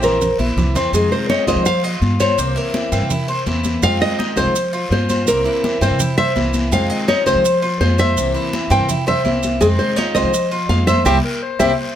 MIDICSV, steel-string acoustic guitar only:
0, 0, Header, 1, 3, 480
1, 0, Start_track
1, 0, Key_signature, -4, "minor"
1, 0, Tempo, 361664
1, 1237, Time_signature, 4, 2, 24, 8
1, 15867, End_track
2, 0, Start_track
2, 0, Title_t, "Steel-string acoustic guitar"
2, 0, Program_c, 0, 25
2, 22, Note_on_c, 0, 64, 70
2, 33, Note_on_c, 0, 60, 64
2, 43, Note_on_c, 0, 58, 57
2, 51, Note_on_c, 0, 52, 60
2, 257, Note_off_c, 0, 52, 0
2, 259, Note_off_c, 0, 64, 0
2, 261, Note_off_c, 0, 58, 0
2, 265, Note_off_c, 0, 60, 0
2, 755, Note_on_c, 0, 52, 50
2, 764, Note_on_c, 0, 58, 53
2, 772, Note_on_c, 0, 60, 52
2, 781, Note_on_c, 0, 64, 55
2, 1226, Note_off_c, 0, 52, 0
2, 1231, Note_off_c, 0, 58, 0
2, 1235, Note_off_c, 0, 60, 0
2, 1240, Note_off_c, 0, 64, 0
2, 1245, Note_on_c, 0, 48, 61
2, 1251, Note_on_c, 0, 51, 75
2, 1259, Note_on_c, 0, 56, 75
2, 1265, Note_on_c, 0, 60, 73
2, 1271, Note_on_c, 0, 65, 83
2, 1704, Note_off_c, 0, 51, 0
2, 1712, Note_off_c, 0, 48, 0
2, 1719, Note_off_c, 0, 56, 0
2, 1720, Note_on_c, 0, 51, 47
2, 1722, Note_off_c, 0, 60, 0
2, 1725, Note_off_c, 0, 65, 0
2, 1734, Note_on_c, 0, 56, 55
2, 1739, Note_on_c, 0, 60, 61
2, 1748, Note_on_c, 0, 65, 53
2, 1937, Note_off_c, 0, 65, 0
2, 1949, Note_off_c, 0, 51, 0
2, 1950, Note_off_c, 0, 60, 0
2, 1953, Note_on_c, 0, 65, 69
2, 1956, Note_off_c, 0, 56, 0
2, 1966, Note_on_c, 0, 60, 68
2, 1972, Note_on_c, 0, 56, 63
2, 1981, Note_on_c, 0, 51, 55
2, 2181, Note_off_c, 0, 51, 0
2, 2183, Note_off_c, 0, 56, 0
2, 2186, Note_off_c, 0, 65, 0
2, 2188, Note_off_c, 0, 60, 0
2, 2667, Note_on_c, 0, 51, 42
2, 2687, Note_on_c, 0, 60, 51
2, 2699, Note_on_c, 0, 65, 54
2, 3143, Note_off_c, 0, 51, 0
2, 3150, Note_on_c, 0, 48, 68
2, 3153, Note_off_c, 0, 60, 0
2, 3154, Note_on_c, 0, 52, 71
2, 3159, Note_off_c, 0, 65, 0
2, 3163, Note_on_c, 0, 58, 76
2, 3172, Note_on_c, 0, 60, 78
2, 3175, Note_on_c, 0, 64, 80
2, 3621, Note_off_c, 0, 52, 0
2, 3625, Note_off_c, 0, 48, 0
2, 3631, Note_off_c, 0, 58, 0
2, 3636, Note_off_c, 0, 60, 0
2, 3637, Note_off_c, 0, 64, 0
2, 3637, Note_on_c, 0, 52, 52
2, 3648, Note_on_c, 0, 58, 56
2, 3654, Note_on_c, 0, 60, 54
2, 3666, Note_on_c, 0, 64, 60
2, 3860, Note_off_c, 0, 64, 0
2, 3869, Note_off_c, 0, 52, 0
2, 3874, Note_off_c, 0, 58, 0
2, 3876, Note_on_c, 0, 64, 73
2, 3877, Note_off_c, 0, 60, 0
2, 3891, Note_on_c, 0, 60, 72
2, 3898, Note_on_c, 0, 58, 63
2, 3906, Note_on_c, 0, 52, 65
2, 4103, Note_off_c, 0, 52, 0
2, 4103, Note_off_c, 0, 58, 0
2, 4108, Note_off_c, 0, 60, 0
2, 4108, Note_off_c, 0, 64, 0
2, 4594, Note_on_c, 0, 52, 52
2, 4604, Note_on_c, 0, 58, 54
2, 4615, Note_on_c, 0, 60, 49
2, 4622, Note_on_c, 0, 64, 50
2, 5067, Note_off_c, 0, 52, 0
2, 5072, Note_off_c, 0, 58, 0
2, 5074, Note_on_c, 0, 48, 73
2, 5078, Note_off_c, 0, 60, 0
2, 5081, Note_off_c, 0, 64, 0
2, 5086, Note_on_c, 0, 51, 73
2, 5088, Note_on_c, 0, 56, 72
2, 5098, Note_on_c, 0, 60, 80
2, 5102, Note_on_c, 0, 65, 88
2, 5539, Note_off_c, 0, 51, 0
2, 5547, Note_off_c, 0, 48, 0
2, 5549, Note_off_c, 0, 56, 0
2, 5555, Note_on_c, 0, 51, 54
2, 5559, Note_off_c, 0, 60, 0
2, 5561, Note_off_c, 0, 65, 0
2, 5565, Note_on_c, 0, 56, 54
2, 5576, Note_on_c, 0, 60, 56
2, 5585, Note_on_c, 0, 65, 53
2, 5769, Note_off_c, 0, 65, 0
2, 5783, Note_off_c, 0, 60, 0
2, 5785, Note_on_c, 0, 65, 77
2, 5788, Note_off_c, 0, 51, 0
2, 5793, Note_off_c, 0, 56, 0
2, 5799, Note_on_c, 0, 60, 68
2, 5806, Note_on_c, 0, 56, 68
2, 5814, Note_on_c, 0, 51, 63
2, 6023, Note_off_c, 0, 65, 0
2, 6028, Note_off_c, 0, 51, 0
2, 6030, Note_off_c, 0, 60, 0
2, 6033, Note_off_c, 0, 56, 0
2, 6511, Note_on_c, 0, 51, 45
2, 6534, Note_on_c, 0, 60, 51
2, 6542, Note_on_c, 0, 65, 61
2, 6986, Note_off_c, 0, 51, 0
2, 6991, Note_on_c, 0, 48, 73
2, 6997, Note_off_c, 0, 60, 0
2, 7001, Note_off_c, 0, 65, 0
2, 7001, Note_on_c, 0, 52, 76
2, 7009, Note_on_c, 0, 58, 78
2, 7015, Note_on_c, 0, 60, 74
2, 7023, Note_on_c, 0, 64, 74
2, 7458, Note_off_c, 0, 52, 0
2, 7466, Note_off_c, 0, 48, 0
2, 7469, Note_off_c, 0, 58, 0
2, 7474, Note_on_c, 0, 52, 54
2, 7478, Note_off_c, 0, 60, 0
2, 7482, Note_off_c, 0, 64, 0
2, 7485, Note_on_c, 0, 58, 57
2, 7495, Note_on_c, 0, 60, 55
2, 7507, Note_on_c, 0, 64, 58
2, 7702, Note_off_c, 0, 64, 0
2, 7707, Note_off_c, 0, 52, 0
2, 7711, Note_off_c, 0, 60, 0
2, 7713, Note_off_c, 0, 58, 0
2, 7718, Note_on_c, 0, 64, 69
2, 7727, Note_on_c, 0, 60, 68
2, 7733, Note_on_c, 0, 58, 67
2, 7745, Note_on_c, 0, 52, 55
2, 7949, Note_off_c, 0, 64, 0
2, 7954, Note_off_c, 0, 60, 0
2, 7957, Note_off_c, 0, 58, 0
2, 7963, Note_off_c, 0, 52, 0
2, 8438, Note_on_c, 0, 52, 48
2, 8453, Note_on_c, 0, 58, 49
2, 8464, Note_on_c, 0, 60, 50
2, 8472, Note_on_c, 0, 64, 59
2, 8909, Note_off_c, 0, 52, 0
2, 8915, Note_on_c, 0, 48, 69
2, 8917, Note_off_c, 0, 58, 0
2, 8922, Note_off_c, 0, 60, 0
2, 8923, Note_on_c, 0, 51, 67
2, 8926, Note_off_c, 0, 64, 0
2, 8926, Note_on_c, 0, 56, 71
2, 8937, Note_on_c, 0, 60, 71
2, 8941, Note_on_c, 0, 65, 73
2, 9384, Note_off_c, 0, 51, 0
2, 9388, Note_off_c, 0, 48, 0
2, 9394, Note_off_c, 0, 56, 0
2, 9399, Note_off_c, 0, 60, 0
2, 9400, Note_on_c, 0, 51, 53
2, 9401, Note_off_c, 0, 65, 0
2, 9420, Note_on_c, 0, 60, 56
2, 9630, Note_off_c, 0, 51, 0
2, 9633, Note_off_c, 0, 60, 0
2, 9641, Note_on_c, 0, 65, 66
2, 9649, Note_on_c, 0, 60, 68
2, 9660, Note_on_c, 0, 56, 65
2, 9669, Note_on_c, 0, 51, 57
2, 9871, Note_off_c, 0, 65, 0
2, 9874, Note_off_c, 0, 51, 0
2, 9875, Note_off_c, 0, 60, 0
2, 9880, Note_off_c, 0, 56, 0
2, 10357, Note_on_c, 0, 51, 50
2, 10368, Note_on_c, 0, 56, 51
2, 10379, Note_on_c, 0, 60, 56
2, 10387, Note_on_c, 0, 65, 55
2, 10828, Note_off_c, 0, 51, 0
2, 10834, Note_off_c, 0, 56, 0
2, 10835, Note_on_c, 0, 48, 70
2, 10839, Note_off_c, 0, 60, 0
2, 10843, Note_off_c, 0, 65, 0
2, 10845, Note_on_c, 0, 52, 77
2, 10851, Note_on_c, 0, 58, 77
2, 10858, Note_on_c, 0, 60, 77
2, 10863, Note_on_c, 0, 64, 74
2, 11302, Note_off_c, 0, 52, 0
2, 11307, Note_off_c, 0, 48, 0
2, 11315, Note_off_c, 0, 58, 0
2, 11318, Note_on_c, 0, 52, 47
2, 11319, Note_off_c, 0, 60, 0
2, 11321, Note_off_c, 0, 64, 0
2, 11330, Note_on_c, 0, 58, 58
2, 11340, Note_on_c, 0, 60, 59
2, 11347, Note_on_c, 0, 64, 61
2, 11533, Note_off_c, 0, 64, 0
2, 11546, Note_off_c, 0, 60, 0
2, 11548, Note_off_c, 0, 52, 0
2, 11549, Note_on_c, 0, 64, 73
2, 11554, Note_off_c, 0, 58, 0
2, 11562, Note_on_c, 0, 60, 71
2, 11574, Note_on_c, 0, 58, 68
2, 11581, Note_on_c, 0, 52, 58
2, 11784, Note_off_c, 0, 64, 0
2, 11788, Note_off_c, 0, 52, 0
2, 11790, Note_off_c, 0, 60, 0
2, 11791, Note_off_c, 0, 58, 0
2, 12282, Note_on_c, 0, 52, 52
2, 12293, Note_on_c, 0, 58, 49
2, 12301, Note_on_c, 0, 60, 52
2, 12312, Note_on_c, 0, 64, 49
2, 12749, Note_off_c, 0, 52, 0
2, 12755, Note_off_c, 0, 58, 0
2, 12759, Note_off_c, 0, 60, 0
2, 12761, Note_on_c, 0, 48, 66
2, 12764, Note_off_c, 0, 64, 0
2, 12767, Note_on_c, 0, 51, 76
2, 12773, Note_on_c, 0, 56, 82
2, 12782, Note_on_c, 0, 60, 76
2, 12789, Note_on_c, 0, 65, 77
2, 13219, Note_off_c, 0, 51, 0
2, 13229, Note_off_c, 0, 48, 0
2, 13230, Note_off_c, 0, 56, 0
2, 13235, Note_on_c, 0, 51, 60
2, 13239, Note_off_c, 0, 60, 0
2, 13242, Note_off_c, 0, 65, 0
2, 13246, Note_on_c, 0, 56, 55
2, 13259, Note_on_c, 0, 60, 52
2, 13263, Note_on_c, 0, 65, 55
2, 13461, Note_off_c, 0, 65, 0
2, 13466, Note_off_c, 0, 51, 0
2, 13470, Note_off_c, 0, 60, 0
2, 13471, Note_off_c, 0, 56, 0
2, 13477, Note_on_c, 0, 65, 73
2, 13486, Note_on_c, 0, 60, 70
2, 13493, Note_on_c, 0, 56, 62
2, 13504, Note_on_c, 0, 51, 56
2, 13699, Note_off_c, 0, 51, 0
2, 13704, Note_off_c, 0, 56, 0
2, 13706, Note_off_c, 0, 65, 0
2, 13711, Note_off_c, 0, 60, 0
2, 14199, Note_on_c, 0, 51, 48
2, 14205, Note_on_c, 0, 56, 47
2, 14217, Note_on_c, 0, 60, 53
2, 14223, Note_on_c, 0, 65, 52
2, 14663, Note_off_c, 0, 60, 0
2, 14666, Note_off_c, 0, 51, 0
2, 14670, Note_off_c, 0, 56, 0
2, 14676, Note_on_c, 0, 55, 87
2, 14678, Note_off_c, 0, 65, 0
2, 14682, Note_on_c, 0, 58, 86
2, 14687, Note_on_c, 0, 60, 74
2, 14830, Note_off_c, 0, 58, 0
2, 14830, Note_off_c, 0, 60, 0
2, 14831, Note_off_c, 0, 55, 0
2, 15390, Note_on_c, 0, 60, 99
2, 15395, Note_on_c, 0, 58, 96
2, 15400, Note_on_c, 0, 55, 82
2, 15545, Note_off_c, 0, 58, 0
2, 15546, Note_off_c, 0, 55, 0
2, 15547, Note_off_c, 0, 60, 0
2, 15867, End_track
3, 0, Start_track
3, 0, Title_t, "Muted steel-string acoustic guitar strokes"
3, 270, Note_on_c, 9, 29, 66
3, 403, Note_off_c, 9, 29, 0
3, 2195, Note_on_c, 9, 29, 66
3, 2328, Note_off_c, 9, 29, 0
3, 4113, Note_on_c, 9, 29, 66
3, 4246, Note_off_c, 9, 29, 0
3, 6042, Note_on_c, 9, 29, 66
3, 6175, Note_off_c, 9, 29, 0
3, 7976, Note_on_c, 9, 29, 59
3, 8108, Note_off_c, 9, 29, 0
3, 9889, Note_on_c, 9, 29, 66
3, 10021, Note_off_c, 9, 29, 0
3, 11796, Note_on_c, 9, 29, 65
3, 11928, Note_off_c, 9, 29, 0
3, 13713, Note_on_c, 9, 29, 64
3, 13845, Note_off_c, 9, 29, 0
3, 15867, End_track
0, 0, End_of_file